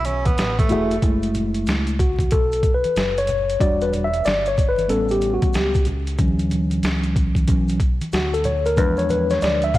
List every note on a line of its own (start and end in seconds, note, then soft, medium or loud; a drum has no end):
0.00 0.35 B1 loud
0.05 0.28 C#4 medium
0.05 closed hi-hat medium
0.05 high conga soft
0.05 maracas soft
0.25 0.57 B3 medium
0.25 kick medium
0.25 closed hi-hat medium
0.25 high conga medium
0.25 maracas soft
0.38 0.69 A1 loud
0.38 snare loud
0.38 closed hi-hat medium
0.38 maracas medium
0.59 1.01 A3 medium
0.59 kick medium
0.59 closed hi-hat medium
0.59 high conga medium
0.59 maracas soft
0.69 1.01 E1 medium
0.69 0.95 A3 medium
0.69 0.95 E4 medium
0.69 0.95 F#4 medium
0.69 0.96 G#4 medium
0.69 0.96 E5 medium
0.69 closed hi-hat medium
0.69 high conga soft
0.69 low conga medium
0.69 maracas medium
0.91 closed hi-hat medium
0.91 maracas soft
1.02 1.64 F#1 medium
1.02 1.95 G#3 soft
1.02 1.96 A3 soft
1.02 1.96 E4 medium
1.02 kick loud
1.02 closed hi-hat medium
1.02 maracas medium
1.22 closed hi-hat soft
1.22 maracas soft
1.35 closed hi-hat medium
1.35 low conga medium
1.35 maracas soft
1.55 closed hi-hat soft
1.55 maracas soft
1.67 2.28 C#2 medium
1.67 snare medium
1.67 closed hi-hat medium
1.67 maracas medium
1.87 closed hi-hat soft
1.87 maracas soft
1.99 2.33 F#4 medium
1.99 kick medium
1.99 closed hi-hat medium
1.99 low conga medium
1.99 maracas soft
2.19 kick medium
2.19 closed hi-hat medium
2.19 high conga medium
2.19 maracas soft
2.31 2.82 B1 medium
2.31 2.72 A4 medium
2.31 kick loud
2.31 closed hi-hat loud
2.31 maracas medium
2.52 closed hi-hat medium
2.52 maracas soft
2.63 kick loud
2.63 closed hi-hat medium
2.63 maracas soft
2.74 3.19 B4 medium
2.84 closed hi-hat soft
2.84 high conga medium
2.84 maracas soft
2.96 3.57 F#1 medium
2.96 snare loud
2.96 closed hi-hat medium
2.96 maracas medium
3.17 3.58 C#5 medium
3.17 closed hi-hat medium
3.17 maracas soft
3.27 closed hi-hat medium
3.27 low conga medium
3.27 maracas medium
3.50 closed hi-hat medium
3.50 maracas soft
3.60 4.22 E1 loud
3.60 4.06 G3 medium
3.60 4.07 D4 soft
3.60 4.07 F#4 medium
3.60 3.83 D5 medium
3.60 kick loud
3.60 closed hi-hat medium
3.60 maracas medium
3.81 3.92 B4 medium
3.81 closed hi-hat soft
3.81 maracas soft
3.93 closed hi-hat medium
3.93 low conga medium
3.93 maracas soft
4.04 4.26 E5 loud
4.13 closed hi-hat soft
4.13 maracas medium
4.24 4.87 G1 medium
4.24 4.45 D5 medium
4.24 snare medium
4.24 closed hi-hat medium
4.24 maracas medium
4.45 4.69 C#5 medium
4.45 closed hi-hat soft
4.45 maracas soft
4.57 kick loud
4.57 closed hi-hat medium
4.57 low conga medium
4.57 maracas soft
4.69 4.91 B4 medium
4.78 closed hi-hat soft
4.78 high conga medium
4.78 maracas soft
4.88 5.40 A1 medium
4.88 5.82 G3 medium
4.88 5.82 B3 soft
4.88 5.82 C#4 medium
4.88 5.12 A4 medium
4.88 closed hi-hat loud
4.88 maracas medium
5.09 5.33 G4 medium
5.09 closed hi-hat medium
5.09 maracas soft
5.21 closed hi-hat medium
5.21 maracas soft
5.34 5.55 F#4 medium
5.42 kick medium
5.42 closed hi-hat medium
5.42 high conga medium
5.42 maracas soft
5.53 6.16 C#2 medium
5.53 5.85 G4 medium
5.53 snare loud
5.53 closed hi-hat medium
5.53 maracas medium
5.74 kick medium
5.74 closed hi-hat medium
5.74 maracas soft
5.85 closed hi-hat medium
5.85 low conga medium
5.85 maracas soft
6.07 closed hi-hat medium
6.07 maracas soft
6.18 6.80 D2 loud
6.18 7.46 E3 medium
6.18 7.47 F#3 medium
6.18 7.47 C#4 medium
6.18 kick loud
6.18 closed hi-hat medium
6.18 maracas medium
6.39 closed hi-hat soft
6.39 maracas soft
6.51 closed hi-hat medium
6.51 low conga medium
6.51 maracas soft
6.71 closed hi-hat soft
6.71 maracas medium
6.83 7.45 C#2 medium
6.83 snare loud
6.83 closed hi-hat medium
6.83 maracas medium
7.04 closed hi-hat soft
7.04 maracas soft
7.16 kick loud
7.16 closed hi-hat medium
7.16 low conga medium
7.16 maracas soft
7.35 kick medium
7.35 closed hi-hat soft
7.35 high conga medium
7.35 maracas soft
7.47 7.99 B1 medium
7.47 7.77 E3 soft
7.47 7.77 F#3 soft
7.47 7.77 C#4 medium
7.47 kick loud
7.47 closed hi-hat loud
7.47 maracas medium
7.68 closed hi-hat medium
7.68 maracas soft
7.80 kick medium
7.80 closed hi-hat medium
7.80 maracas soft
8.01 muted fingered electric bass stroke soft
8.01 closed hi-hat medium
8.01 high conga medium
8.01 maracas soft
8.12 8.78 D2 loud
8.12 8.34 F#4 medium
8.12 snare loud
8.12 closed hi-hat medium
8.12 maracas medium
8.34 8.45 A4 medium
8.34 closed hi-hat medium
8.34 maracas soft
8.44 8.66 C#5 medium
8.44 closed hi-hat medium
8.44 low conga medium
8.44 maracas medium
8.65 8.78 A#4 medium
8.65 closed hi-hat medium
8.65 maracas soft
8.77 9.38 E2 medium
8.77 9.69 F3 medium
8.77 9.70 G#3 soft
8.77 9.70 D4 medium
8.77 8.96 B4 medium
8.77 kick loud
8.77 closed hi-hat loud
8.77 maracas medium
8.97 9.09 C#5 medium
8.97 closed hi-hat soft
8.97 maracas soft
9.09 9.31 B4 medium
9.09 closed hi-hat medium
9.09 low conga medium
9.09 maracas soft
9.30 9.42 C#5 loud
9.30 snare soft
9.30 closed hi-hat soft
9.30 maracas medium
9.41 9.78 D2 medium
9.41 9.63 D5 loud
9.41 snare medium
9.41 closed hi-hat medium
9.41 maracas medium
9.62 9.75 E5 medium
9.62 closed hi-hat soft
9.62 maracas soft
9.74 9.78 F5 loud
9.74 kick medium
9.74 closed hi-hat medium
9.74 low conga medium
9.74 maracas soft